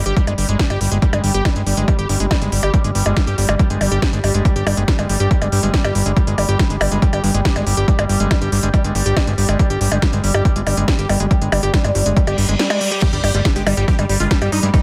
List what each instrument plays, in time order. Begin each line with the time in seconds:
Already playing: synth drone G3, ambient pad G3 G4 C5 D5 D6
0.06 analog synth bass G1, acid bass G4, closed hi-hat
0.17 acid bass G3, kick, closed hi-hat
0.27 analog synth bass G1, acid bass G#3, closed hi-hat, percussion blips
0.38 analog synth bass G1, acid bass G3, open hi-hat
0.49 analog synth bass G1, acid bass G#3, closed hi-hat
0.59 acid bass G3, kick, snare, closed hi-hat
0.70 analog synth bass G1, acid bass G4, closed hi-hat, percussion blips
0.81 analog synth bass G1, acid bass G3, open hi-hat
0.92 analog synth bass G1, acid bass G#3, closed hi-hat
1.02 acid bass G3, kick, closed hi-hat
1.13 analog synth bass G1, acid bass G#3, closed hi-hat, percussion blips
1.24 analog synth bass G1, acid bass G3, open hi-hat
1.34 analog synth bass G1, acid bass G4, closed hi-hat
1.45 acid bass G3, kick, snare, closed hi-hat, percussion blips
1.56 analog synth bass G1, acid bass G#3, closed hi-hat
1.66 analog synth bass G1, acid bass G3, open hi-hat
1.77 analog synth bass G1, acid bass G#3, closed hi-hat
1.88 acid bass G3, kick, closed hi-hat, percussion blips
1.99 analog synth bass G1, acid bass G4, closed hi-hat
2.09 analog synth bass G1, acid bass G3, open hi-hat
2.20 analog synth bass G1, acid bass G#3, closed hi-hat
2.31 acid bass G3, kick, snare, closed hi-hat, percussion blips
2.42 analog synth bass G1, acid bass G#3, closed hi-hat
2.52 analog synth bass G1, acid bass G3, open hi-hat
2.63 analog synth bass G1, acid bass G4, closed hi-hat, percussion blips
2.74 acid bass G3, kick, closed hi-hat
2.84 analog synth bass G1, acid bass G#3, closed hi-hat
2.95 analog synth bass G1, acid bass G3, open hi-hat
3.06 analog synth bass G1, acid bass G#3, closed hi-hat, percussion blips
3.17 acid bass G3, kick, snare, closed hi-hat
3.27 analog synth bass G1, acid bass G4, closed hi-hat
3.38 analog synth bass G1, acid bass G3, open hi-hat
3.49 analog synth bass G1, acid bass G#3, closed hi-hat, percussion blips
3.59 acid bass G3, kick, closed hi-hat
3.70 analog synth bass G1, acid bass G#3, closed hi-hat
3.81 analog synth bass G1, acid bass G3, open hi-hat, percussion blips
3.92 analog synth bass G1, acid bass G4, closed hi-hat
4.02 acid bass G3, kick, snare, closed hi-hat
4.13 analog synth bass G1, acid bass G#3, closed hi-hat
4.24 analog synth bass G1, acid bass G3, open hi-hat, percussion blips
4.34 analog synth bass G1, acid bass G#3, closed hi-hat
4.45 acid bass G3, kick, closed hi-hat
4.56 analog synth bass G1, acid bass G4, closed hi-hat
4.67 analog synth bass G1, acid bass G3, open hi-hat, percussion blips
4.77 analog synth bass G1, acid bass G#3, closed hi-hat
4.88 acid bass G3, kick, snare, closed hi-hat
4.99 analog synth bass G1, acid bass G#3, closed hi-hat, percussion blips
5.09 analog synth bass G1, acid bass G3, open hi-hat
5.20 analog synth bass G1, acid bass G4, closed hi-hat
5.31 acid bass G3, kick, closed hi-hat
5.42 analog synth bass G1, acid bass G#3, closed hi-hat, percussion blips
5.52 analog synth bass G1, acid bass G3, open hi-hat
5.63 analog synth bass G1, acid bass G#3, closed hi-hat
5.74 acid bass G3, kick, snare, closed hi-hat
5.84 analog synth bass G1, acid bass G4, closed hi-hat, percussion blips
5.95 analog synth bass G1, acid bass G3, open hi-hat
6.06 analog synth bass G1, acid bass G#3, closed hi-hat
6.17 acid bass G3, kick, closed hi-hat
6.27 analog synth bass G1, acid bass G#3, closed hi-hat
6.38 analog synth bass G1, acid bass G3, open hi-hat, percussion blips
6.49 analog synth bass G1, acid bass G4, closed hi-hat
6.59 acid bass G3, kick, snare, closed hi-hat
6.70 analog synth bass G1, acid bass G#3, closed hi-hat
6.81 analog synth bass G1, acid bass G3, open hi-hat, percussion blips
6.92 analog synth bass G1, acid bass G#3, closed hi-hat
7.02 acid bass G3, kick, closed hi-hat
7.13 analog synth bass G1, acid bass G4, closed hi-hat, percussion blips
7.24 analog synth bass G1, acid bass G3, open hi-hat
7.34 analog synth bass G1, acid bass G#3, closed hi-hat
7.45 acid bass G3, kick, snare, closed hi-hat
7.56 analog synth bass G1, acid bass G#3, closed hi-hat, percussion blips
7.67 analog synth bass G1, acid bass G3, open hi-hat
7.77 analog synth bass G1, acid bass G4, closed hi-hat
7.88 acid bass G3, kick, closed hi-hat
7.99 analog synth bass G1, acid bass G#3, closed hi-hat, percussion blips
8.09 analog synth bass G1, acid bass G3, open hi-hat
8.20 analog synth bass G1, acid bass G#3, closed hi-hat
8.31 acid bass G3, kick, snare, closed hi-hat, percussion blips
8.42 analog synth bass G1, acid bass G4, closed hi-hat
8.52 analog synth bass G1, acid bass G3, open hi-hat
8.63 analog synth bass G1, acid bass G#3, closed hi-hat
8.74 acid bass G3, kick, closed hi-hat, percussion blips
8.84 analog synth bass G1, acid bass G#3, closed hi-hat
8.95 analog synth bass G1, acid bass G3, open hi-hat
9.06 analog synth bass G1, acid bass G4, closed hi-hat
9.17 acid bass G3, kick, snare, closed hi-hat, percussion blips
9.27 analog synth bass G1, acid bass G#3, closed hi-hat
9.38 analog synth bass G1, acid bass G3, open hi-hat
9.49 analog synth bass G1, acid bass G#3, closed hi-hat, percussion blips
9.59 acid bass G3, kick, closed hi-hat
9.70 analog synth bass G1, acid bass G4, closed hi-hat
9.81 analog synth bass G1, acid bass G3, open hi-hat
9.92 analog synth bass G1, acid bass G#3, closed hi-hat, percussion blips
10.02 acid bass G3, kick, snare, closed hi-hat
10.13 analog synth bass G1, acid bass G#3, closed hi-hat
10.24 analog synth bass G1, acid bass G3, open hi-hat
10.34 analog synth bass G1, acid bass G4, closed hi-hat, percussion blips
10.45 acid bass G3, kick, closed hi-hat
10.56 analog synth bass G1, acid bass G#3, closed hi-hat
10.67 analog synth bass G1, acid bass G3, open hi-hat, percussion blips
10.77 analog synth bass G1, acid bass G#3, closed hi-hat
10.88 acid bass G3, kick, snare, closed hi-hat
10.99 analog synth bass G1, acid bass G4, closed hi-hat
11.09 analog synth bass G1, acid bass G3, open hi-hat, percussion blips
11.20 analog synth bass G1, acid bass G#3, closed hi-hat
11.31 acid bass G3, kick, closed hi-hat
11.42 analog synth bass G1, acid bass G#3, closed hi-hat
11.52 analog synth bass G1, acid bass G3, open hi-hat, percussion blips
11.63 analog synth bass G1, acid bass G4, closed hi-hat
11.74 acid bass G3, kick, snare, closed hi-hat
11.84 analog synth bass G1, acid bass G#3, closed hi-hat, percussion blips
11.95 analog synth bass G1, acid bass G3, open hi-hat
12.06 analog synth bass G1, acid bass G#3, closed hi-hat
12.17 acid bass G3, kick, closed hi-hat, reverse cymbal
12.27 analog synth bass G1, acid bass G4, closed hi-hat, percussion blips
12.38 analog synth bass G1, acid bass G3, open hi-hat
12.49 analog synth bass G1, acid bass G#3, closed hi-hat
12.59 acid bass G3, snare, closed hi-hat
12.70 acid bass G#3, closed hi-hat, percussion blips
12.81 acid bass G3, open hi-hat
12.91 acid bass G4, closed hi-hat
13.02 acid bass G3, synth drone G3, ambient pad G3, supersaw synth G4, kick, closed hi-hat, crash, impact
13.13 analog synth bass G1, supersaw synth G3, acid bass G4, closed hi-hat
13.24 analog synth bass G1, acid bass G3, supersaw synth G4, open hi-hat, percussion blips
13.34 analog synth bass G1, supersaw synth G3, acid bass G#3, ambient pad D6, closed hi-hat
13.45 supersaw synth G3, acid bass G3, kick, snare, closed hi-hat
13.56 analog synth bass G1, acid bass G#3, supersaw synth G4, closed hi-hat
13.64 analog synth bass G1, supersaw synth G3, acid bass G3, ambient pad G4, open hi-hat, percussion blips
13.77 analog synth bass G1, supersaw synth G3, acid bass G4, closed hi-hat
13.88 acid bass G3, supersaw synth G4, kick, snare, closed hi-hat
13.99 analog synth bass G1, supersaw synth G3, acid bass G#3, closed hi-hat, percussion blips
14.09 analog synth bass G1, supersaw synth G3, acid bass G3, open hi-hat
14.20 analog synth bass G1, acid bass G#3, supersaw synth F4, closed hi-hat
14.31 acid bass G3, supersaw synth G3, kick, snare, closed hi-hat
14.42 analog synth bass G1, supersaw synth G3, acid bass G4, closed hi-hat, percussion blips
14.52 analog synth bass G2, acid bass G3, supersaw synth D#4, open hi-hat
14.63 analog synth bass G2, supersaw synth G3, acid bass G#3, closed hi-hat
14.74 acid bass G3, supersaw synth D#4, kick, closed hi-hat